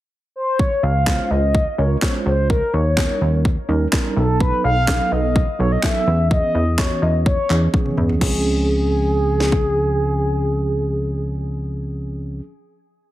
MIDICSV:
0, 0, Header, 1, 5, 480
1, 0, Start_track
1, 0, Tempo, 476190
1, 599, Time_signature, 4, 2, 24, 8
1, 13221, End_track
2, 0, Start_track
2, 0, Title_t, "Soft synth lead"
2, 0, Program_c, 0, 80
2, 359, Note_on_c, 0, 72, 96
2, 598, Note_on_c, 0, 73, 108
2, 613, Note_off_c, 0, 72, 0
2, 838, Note_on_c, 0, 77, 119
2, 853, Note_off_c, 0, 73, 0
2, 1316, Note_on_c, 0, 75, 113
2, 1331, Note_off_c, 0, 77, 0
2, 1799, Note_on_c, 0, 73, 96
2, 1814, Note_off_c, 0, 75, 0
2, 2032, Note_off_c, 0, 73, 0
2, 2038, Note_on_c, 0, 73, 98
2, 2146, Note_off_c, 0, 73, 0
2, 2277, Note_on_c, 0, 72, 94
2, 2501, Note_off_c, 0, 72, 0
2, 2520, Note_on_c, 0, 70, 99
2, 2759, Note_on_c, 0, 73, 95
2, 2774, Note_off_c, 0, 70, 0
2, 3719, Note_off_c, 0, 73, 0
2, 4200, Note_on_c, 0, 69, 99
2, 4423, Note_off_c, 0, 69, 0
2, 4441, Note_on_c, 0, 71, 113
2, 4663, Note_off_c, 0, 71, 0
2, 4681, Note_on_c, 0, 77, 119
2, 5163, Note_on_c, 0, 75, 109
2, 5178, Note_off_c, 0, 77, 0
2, 5637, Note_off_c, 0, 75, 0
2, 5643, Note_on_c, 0, 73, 97
2, 5765, Note_on_c, 0, 75, 94
2, 5780, Note_off_c, 0, 73, 0
2, 5877, Note_off_c, 0, 75, 0
2, 5883, Note_on_c, 0, 76, 105
2, 6327, Note_off_c, 0, 76, 0
2, 6362, Note_on_c, 0, 75, 111
2, 6840, Note_on_c, 0, 73, 97
2, 6855, Note_off_c, 0, 75, 0
2, 7080, Note_on_c, 0, 75, 94
2, 7095, Note_off_c, 0, 73, 0
2, 7315, Note_off_c, 0, 75, 0
2, 7322, Note_on_c, 0, 73, 88
2, 8000, Note_off_c, 0, 73, 0
2, 8280, Note_on_c, 0, 68, 106
2, 12511, Note_off_c, 0, 68, 0
2, 13221, End_track
3, 0, Start_track
3, 0, Title_t, "Tine electric piano"
3, 0, Program_c, 1, 4
3, 1075, Note_on_c, 1, 56, 77
3, 1077, Note_on_c, 1, 61, 70
3, 1079, Note_on_c, 1, 65, 69
3, 1081, Note_on_c, 1, 72, 85
3, 1610, Note_off_c, 1, 56, 0
3, 1611, Note_off_c, 1, 61, 0
3, 1612, Note_off_c, 1, 65, 0
3, 1613, Note_off_c, 1, 72, 0
3, 1795, Note_on_c, 1, 56, 72
3, 1796, Note_on_c, 1, 61, 68
3, 1798, Note_on_c, 1, 65, 69
3, 1800, Note_on_c, 1, 70, 84
3, 1975, Note_off_c, 1, 56, 0
3, 1975, Note_off_c, 1, 61, 0
3, 1976, Note_off_c, 1, 65, 0
3, 1977, Note_off_c, 1, 70, 0
3, 2035, Note_on_c, 1, 56, 76
3, 2036, Note_on_c, 1, 61, 74
3, 2038, Note_on_c, 1, 65, 74
3, 2517, Note_off_c, 1, 56, 0
3, 2518, Note_off_c, 1, 61, 0
3, 2519, Note_off_c, 1, 65, 0
3, 2995, Note_on_c, 1, 55, 75
3, 2997, Note_on_c, 1, 61, 72
3, 2999, Note_on_c, 1, 63, 73
3, 3000, Note_on_c, 1, 70, 85
3, 3530, Note_off_c, 1, 55, 0
3, 3531, Note_off_c, 1, 61, 0
3, 3532, Note_off_c, 1, 63, 0
3, 3533, Note_off_c, 1, 70, 0
3, 3716, Note_on_c, 1, 55, 89
3, 3718, Note_on_c, 1, 61, 80
3, 3719, Note_on_c, 1, 63, 80
3, 3721, Note_on_c, 1, 70, 99
3, 3895, Note_off_c, 1, 55, 0
3, 3896, Note_off_c, 1, 61, 0
3, 3897, Note_off_c, 1, 63, 0
3, 3898, Note_off_c, 1, 70, 0
3, 3955, Note_on_c, 1, 55, 90
3, 3958, Note_on_c, 1, 61, 84
3, 3959, Note_on_c, 1, 63, 85
3, 3961, Note_on_c, 1, 70, 104
3, 4188, Note_off_c, 1, 63, 0
3, 4197, Note_off_c, 1, 55, 0
3, 4197, Note_on_c, 1, 54, 76
3, 4198, Note_off_c, 1, 61, 0
3, 4199, Note_on_c, 1, 59, 74
3, 4200, Note_off_c, 1, 70, 0
3, 4200, Note_on_c, 1, 63, 73
3, 4202, Note_on_c, 1, 69, 85
3, 4774, Note_off_c, 1, 54, 0
3, 4775, Note_off_c, 1, 59, 0
3, 4775, Note_off_c, 1, 63, 0
3, 4776, Note_off_c, 1, 69, 0
3, 4917, Note_on_c, 1, 54, 81
3, 4919, Note_on_c, 1, 59, 72
3, 4920, Note_on_c, 1, 63, 69
3, 4922, Note_on_c, 1, 69, 85
3, 5451, Note_off_c, 1, 54, 0
3, 5452, Note_off_c, 1, 59, 0
3, 5453, Note_off_c, 1, 63, 0
3, 5453, Note_off_c, 1, 69, 0
3, 5636, Note_on_c, 1, 54, 77
3, 5637, Note_on_c, 1, 59, 70
3, 5640, Note_on_c, 1, 63, 71
3, 5641, Note_on_c, 1, 69, 84
3, 5815, Note_off_c, 1, 54, 0
3, 5816, Note_off_c, 1, 59, 0
3, 5817, Note_off_c, 1, 63, 0
3, 5818, Note_off_c, 1, 69, 0
3, 5877, Note_on_c, 1, 54, 82
3, 5879, Note_on_c, 1, 59, 73
3, 5880, Note_on_c, 1, 63, 72
3, 5882, Note_on_c, 1, 69, 89
3, 6106, Note_off_c, 1, 59, 0
3, 6117, Note_on_c, 1, 52, 78
3, 6118, Note_off_c, 1, 54, 0
3, 6119, Note_off_c, 1, 63, 0
3, 6119, Note_on_c, 1, 59, 69
3, 6120, Note_off_c, 1, 69, 0
3, 6120, Note_on_c, 1, 61, 73
3, 6121, Note_on_c, 1, 68, 85
3, 6694, Note_off_c, 1, 52, 0
3, 6695, Note_off_c, 1, 59, 0
3, 6695, Note_off_c, 1, 61, 0
3, 6696, Note_off_c, 1, 68, 0
3, 6836, Note_on_c, 1, 52, 77
3, 6838, Note_on_c, 1, 59, 71
3, 6840, Note_on_c, 1, 61, 70
3, 6842, Note_on_c, 1, 66, 86
3, 7371, Note_off_c, 1, 52, 0
3, 7371, Note_off_c, 1, 59, 0
3, 7373, Note_off_c, 1, 61, 0
3, 7373, Note_off_c, 1, 66, 0
3, 7556, Note_on_c, 1, 52, 73
3, 7558, Note_on_c, 1, 59, 67
3, 7560, Note_on_c, 1, 61, 68
3, 7562, Note_on_c, 1, 68, 82
3, 7735, Note_off_c, 1, 52, 0
3, 7736, Note_off_c, 1, 59, 0
3, 7737, Note_off_c, 1, 61, 0
3, 7738, Note_off_c, 1, 68, 0
3, 7796, Note_on_c, 1, 52, 77
3, 7797, Note_on_c, 1, 59, 72
3, 7799, Note_on_c, 1, 61, 74
3, 7801, Note_on_c, 1, 68, 85
3, 8258, Note_on_c, 1, 53, 79
3, 8270, Note_on_c, 1, 60, 75
3, 8272, Note_off_c, 1, 61, 0
3, 8277, Note_off_c, 1, 52, 0
3, 8278, Note_off_c, 1, 59, 0
3, 8280, Note_off_c, 1, 68, 0
3, 8284, Note_on_c, 1, 61, 74
3, 8298, Note_on_c, 1, 68, 89
3, 12488, Note_off_c, 1, 53, 0
3, 12501, Note_off_c, 1, 60, 0
3, 12515, Note_off_c, 1, 61, 0
3, 12529, Note_off_c, 1, 68, 0
3, 13221, End_track
4, 0, Start_track
4, 0, Title_t, "Analog synth bass"
4, 0, Program_c, 2, 38
4, 838, Note_on_c, 2, 37, 92
4, 1202, Note_off_c, 2, 37, 0
4, 1317, Note_on_c, 2, 37, 91
4, 1681, Note_off_c, 2, 37, 0
4, 1797, Note_on_c, 2, 37, 85
4, 1980, Note_off_c, 2, 37, 0
4, 2277, Note_on_c, 2, 37, 90
4, 2641, Note_off_c, 2, 37, 0
4, 2758, Note_on_c, 2, 39, 88
4, 3122, Note_off_c, 2, 39, 0
4, 3238, Note_on_c, 2, 39, 87
4, 3602, Note_off_c, 2, 39, 0
4, 3717, Note_on_c, 2, 39, 91
4, 3899, Note_off_c, 2, 39, 0
4, 4198, Note_on_c, 2, 35, 93
4, 4562, Note_off_c, 2, 35, 0
4, 4678, Note_on_c, 2, 35, 91
4, 5042, Note_off_c, 2, 35, 0
4, 5160, Note_on_c, 2, 35, 86
4, 5523, Note_off_c, 2, 35, 0
4, 5641, Note_on_c, 2, 35, 92
4, 5822, Note_off_c, 2, 35, 0
4, 6120, Note_on_c, 2, 40, 90
4, 6483, Note_off_c, 2, 40, 0
4, 6600, Note_on_c, 2, 40, 87
4, 6963, Note_off_c, 2, 40, 0
4, 7079, Note_on_c, 2, 40, 91
4, 7442, Note_off_c, 2, 40, 0
4, 7560, Note_on_c, 2, 40, 89
4, 7741, Note_off_c, 2, 40, 0
4, 8039, Note_on_c, 2, 40, 86
4, 8221, Note_off_c, 2, 40, 0
4, 8279, Note_on_c, 2, 37, 98
4, 12509, Note_off_c, 2, 37, 0
4, 13221, End_track
5, 0, Start_track
5, 0, Title_t, "Drums"
5, 599, Note_on_c, 9, 36, 101
5, 699, Note_off_c, 9, 36, 0
5, 1077, Note_on_c, 9, 36, 104
5, 1079, Note_on_c, 9, 39, 108
5, 1090, Note_on_c, 9, 38, 86
5, 1178, Note_off_c, 9, 36, 0
5, 1180, Note_off_c, 9, 39, 0
5, 1191, Note_off_c, 9, 38, 0
5, 1558, Note_on_c, 9, 36, 118
5, 1659, Note_off_c, 9, 36, 0
5, 2037, Note_on_c, 9, 39, 116
5, 2039, Note_on_c, 9, 36, 113
5, 2048, Note_on_c, 9, 38, 96
5, 2138, Note_off_c, 9, 39, 0
5, 2140, Note_off_c, 9, 36, 0
5, 2149, Note_off_c, 9, 38, 0
5, 2519, Note_on_c, 9, 36, 107
5, 2620, Note_off_c, 9, 36, 0
5, 2997, Note_on_c, 9, 36, 103
5, 3000, Note_on_c, 9, 39, 111
5, 3011, Note_on_c, 9, 38, 90
5, 3098, Note_off_c, 9, 36, 0
5, 3101, Note_off_c, 9, 39, 0
5, 3112, Note_off_c, 9, 38, 0
5, 3479, Note_on_c, 9, 36, 126
5, 3579, Note_off_c, 9, 36, 0
5, 3958, Note_on_c, 9, 39, 120
5, 3960, Note_on_c, 9, 36, 115
5, 3969, Note_on_c, 9, 38, 92
5, 4059, Note_off_c, 9, 39, 0
5, 4060, Note_off_c, 9, 36, 0
5, 4070, Note_off_c, 9, 38, 0
5, 4440, Note_on_c, 9, 36, 108
5, 4540, Note_off_c, 9, 36, 0
5, 4918, Note_on_c, 9, 36, 106
5, 4920, Note_on_c, 9, 39, 114
5, 4931, Note_on_c, 9, 38, 84
5, 5019, Note_off_c, 9, 36, 0
5, 5021, Note_off_c, 9, 39, 0
5, 5032, Note_off_c, 9, 38, 0
5, 5400, Note_on_c, 9, 36, 125
5, 5500, Note_off_c, 9, 36, 0
5, 5878, Note_on_c, 9, 39, 122
5, 5880, Note_on_c, 9, 36, 117
5, 5889, Note_on_c, 9, 38, 96
5, 5979, Note_off_c, 9, 39, 0
5, 5981, Note_off_c, 9, 36, 0
5, 5990, Note_off_c, 9, 38, 0
5, 6360, Note_on_c, 9, 36, 109
5, 6461, Note_off_c, 9, 36, 0
5, 6838, Note_on_c, 9, 36, 108
5, 6840, Note_on_c, 9, 39, 111
5, 6851, Note_on_c, 9, 38, 87
5, 6939, Note_off_c, 9, 36, 0
5, 6941, Note_off_c, 9, 39, 0
5, 6952, Note_off_c, 9, 38, 0
5, 7319, Note_on_c, 9, 36, 122
5, 7420, Note_off_c, 9, 36, 0
5, 7561, Note_on_c, 9, 39, 61
5, 7662, Note_off_c, 9, 39, 0
5, 7798, Note_on_c, 9, 48, 56
5, 7799, Note_on_c, 9, 36, 114
5, 7899, Note_off_c, 9, 48, 0
5, 7900, Note_off_c, 9, 36, 0
5, 7919, Note_on_c, 9, 47, 64
5, 8020, Note_off_c, 9, 47, 0
5, 8039, Note_on_c, 9, 45, 84
5, 8140, Note_off_c, 9, 45, 0
5, 8159, Note_on_c, 9, 43, 86
5, 8260, Note_off_c, 9, 43, 0
5, 8279, Note_on_c, 9, 36, 101
5, 8279, Note_on_c, 9, 49, 82
5, 8380, Note_off_c, 9, 36, 0
5, 8380, Note_off_c, 9, 49, 0
5, 9479, Note_on_c, 9, 38, 58
5, 9579, Note_off_c, 9, 38, 0
5, 9599, Note_on_c, 9, 36, 73
5, 9700, Note_off_c, 9, 36, 0
5, 13221, End_track
0, 0, End_of_file